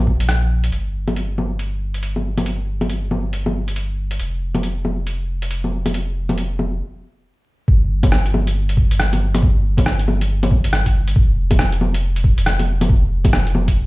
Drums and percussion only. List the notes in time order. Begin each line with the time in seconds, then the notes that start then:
0.07 kick
0.20 closed hi-hat
0.29 cross-stick, closed hi-hat
0.64 closed hi-hat
0.72 closed hi-hat
1.08 closed hi-hat, low bongo
1.16 closed hi-hat
1.38 low bongo
1.59 closed hi-hat
1.94 closed hi-hat
2.03 closed hi-hat
2.16 low bongo
2.37 closed hi-hat, low bongo
2.46 closed hi-hat
2.81 closed hi-hat, low bongo
2.90 closed hi-hat
3.11 low bongo
3.33 closed hi-hat
3.46 low bongo
3.68 closed hi-hat
3.76 closed hi-hat
4.11 closed hi-hat
4.19 closed hi-hat
4.55 closed hi-hat, low bongo
4.63 closed hi-hat
4.85 low bongo
5.07 closed hi-hat
5.42 closed hi-hat
5.51 closed hi-hat
5.64 low bongo
5.86 closed hi-hat, low bongo
5.94 closed hi-hat
6.29 closed hi-hat, low bongo
6.38 closed hi-hat
6.59 low bongo
7.68 kick
8.03 kick, closed hi-hat, low bongo
8.12 cross-stick
8.26 closed hi-hat
8.34 low bongo
8.47 closed hi-hat
8.69 closed hi-hat
8.77 kick
8.91 closed hi-hat
9.00 cross-stick
9.13 closed hi-hat, low bongo
9.34 closed hi-hat, low bongo
9.43 kick
9.77 kick, closed hi-hat, low bongo
9.86 cross-stick
9.99 closed hi-hat
10.08 low bongo
10.21 closed hi-hat
10.43 closed hi-hat, low bongo
10.51 kick
10.64 closed hi-hat
10.73 cross-stick
10.86 kick, closed hi-hat
11.07 closed hi-hat
11.16 kick
11.51 kick, closed hi-hat, low bongo
11.59 cross-stick
11.72 closed hi-hat
11.81 low bongo
11.94 closed hi-hat
12.16 closed hi-hat
12.24 kick
12.38 closed hi-hat
12.46 cross-stick
12.59 closed hi-hat, low bongo
12.81 closed hi-hat, low bongo
12.89 kick
13.24 kick, closed hi-hat, low bongo
13.33 cross-stick
13.47 closed hi-hat
13.55 low bongo
13.68 kick, closed hi-hat